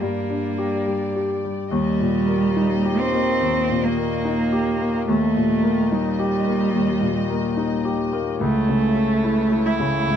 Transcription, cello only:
0.00 A#3
1.72 G3
2.99 C4
3.85 A#3
5.08 A3
5.92 G3
8.41 A3
9.66 E4

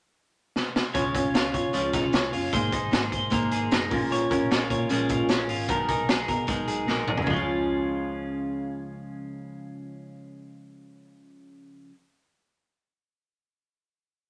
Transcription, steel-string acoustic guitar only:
0.94 C#3 F3 G#3 C#4 F4 C#5
1.14 G#3 C#4 F4 C#5
1.34 G#3 C#4 F4 C#5
1.54 G#3 C#4 F4 C#5
1.73 C#3 F3 G#3 C#4 F4 C#5
2.12 G#3 C#4 F4 C#5
2.32 G#3 C#4 F4 C#5
2.53 G#3 A#3 D#4 G#4 C5
2.73 D#4 G#4 C5
2.91 A#3 D#4 G#4 C5
3.30 G#3 A#3 D#4 G#4 C5
3.72 D#4 G#4 C5
3.90 A#2 F3 G#3 C#4 F4 A#4
4.30 G#3 C#4 F4 A#4
4.51 G#3 C#4 F4 A#4
4.70 G#3 C#4 F4 A#4
4.89 A#2 F3 G#3 C#4 F4 A#4
5.29 G#3 C#4 F4 A#4
5.69 B2 D#3 G#3 D#4 G#4 A#4
5.88 G#3 D#4 G#4 A#4
6.10 G#3 D#4 G#4 A#4
6.47 B2 D#3 G#3 D#4 G#4 A#4
6.87 G#3 D#4 G#4 A#4
7.22 C#3 F3
7.30 G#3 C#4
7.36 F4

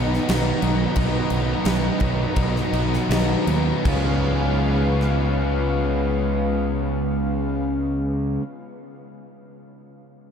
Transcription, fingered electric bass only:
Already playing: B1
0.29 B1
0.63 B1
0.96 B1
1.31 B1
1.66 B1
2.01 B1
2.36 B1
2.73 B1
3.09 B1
3.47 D#2
3.85 C#2

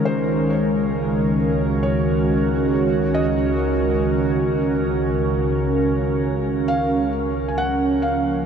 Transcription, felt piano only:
0.05 C5
0.50 C#5
1.83 C#5
3.14 D#5
6.68 F5
7.48 G#5
7.58 F#5
8.02 F5

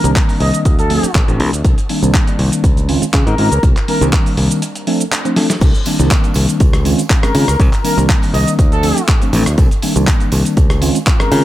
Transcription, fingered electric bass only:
0.04 C2
0.40 C2
0.65 D2
1.03 muted fingered electric bass stroke
1.15 A1
1.28 A1
1.40 C2
1.53 D2
1.65 C2
2.03 C2
2.39 C2
2.64 C#2
3.02 muted fingered electric bass stroke
3.13 C#3
3.27 G#2
3.38 G#2
3.52 C#2
3.63 C2
4.01 C2
4.38 C2
5.61 C2
5.99 C2
6.36 C2
6.60 C#2
7.35 C#3
7.48 C#2
7.60 C2
7.97 C2
8.34 C2
8.59 D2
9.33 A1
9.46 D2
9.58 C2
9.96 C2
10.32 C2
10.57 C#2
11.32 C#3

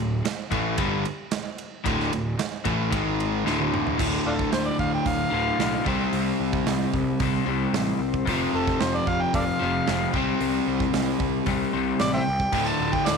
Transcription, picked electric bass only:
Already playing: D1
0.25 muted picked electric bass stroke
0.52 A1
0.78 G1
1.86 D1
2.12 D1
2.38 muted picked electric bass stroke
2.66 A1
2.92 G#1
3.45 D1
3.99 D1
4.26 D1
4.52 D1
4.79 D1
5.06 D1
5.32 D1
5.59 B1
5.86 C2
6.13 C2
6.40 C2
6.67 C2
6.93 C2
7.20 C2
7.47 C2
7.73 A1
7.99 C2
8.27 F1
8.54 F1
8.81 F1
9.07 F1
9.34 F1
9.62 F1
9.88 F1
10.14 C2
10.41 C2
10.67 C2
10.94 C2
11.20 C2
11.47 C2
11.74 C2
12.01 A1
12.28 C2
12.53 D1
12.80 D1
13.07 D1

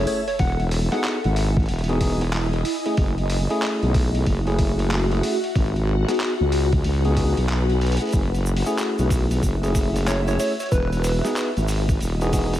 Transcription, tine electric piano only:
Already playing: A3 C#4 E4 G#4
0.92 B3 D#4 F#4 G#4
1.89 B3 D#4 F#4 G#4
2.01 B3 D#4 F#4 G#4
2.86 A3 C#4 E4 G#4
3.50 A3 C#4 E4 G#4
4.47 A3 C#4 E4 G#4
5.12 A3 C#4 E4 G#4
6.08 B3 D#4 F#4 G#4
7.05 B3 D#4 F#4 G#4
7.17 B3 D#4 F#4 G#4
8.02 A3 C#4 E4 G#4
8.66 A3 C#4 E4 G#4
9.63 A3 C#4 E4 G#4
10.28 A3 C#4 E4 G#4
11.25 B3 D#4 F#4 G#4
12.21 B3 D#4 F#4 G#4
12.33 B3 D#4 F#4 G#4

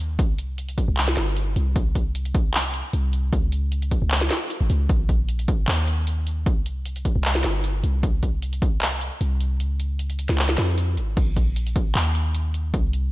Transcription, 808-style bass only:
Already playing: D#2
0.19 C2
0.88 C2
1.17 G1
1.56 C2
2.93 C2
3.33 C#2
4.02 C#2
4.61 G#1
4.70 C#2
4.89 A#1
5.68 D#2
6.46 C2
7.16 C2
7.44 G1
7.84 C2
9.21 C2
9.60 C#2
10.29 C#2
10.58 F2
10.97 G#1
11.17 A#1
11.95 D#2
12.74 C2

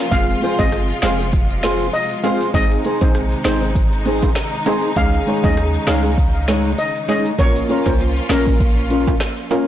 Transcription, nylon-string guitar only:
0.42 C4 F4 G#4 C5
1.02 C4 F4 G#4 C5
1.19 muted nylon-string guitar stroke
1.63 C4 F4 G#4 C5
2.23 C4 F4 G#4 C5
2.84 C4 D#4 G#4 C5
3.45 C4 D#4 G#4 C5
3.62 muted nylon-string guitar stroke
4.05 C4 D#4 G#4 C5
4.66 C4 D#4 G#4 C5
5.27 G#3 D#4 G#4 C#5
5.87 G#3 D#4 G#4 C#5
6.04 muted nylon-string guitar stroke
6.48 G#3 D#4 G#4 C#5
7.08 G#3 D#4 G#4 C#5
7.69 C#4 F4 A#4 C#5
8.29 C#4 F4 A#4 C#5
8.47 muted nylon-string guitar stroke
8.90 C#4 F4 A#4 C#5
9.51 C#4 F4 A#4 C#5

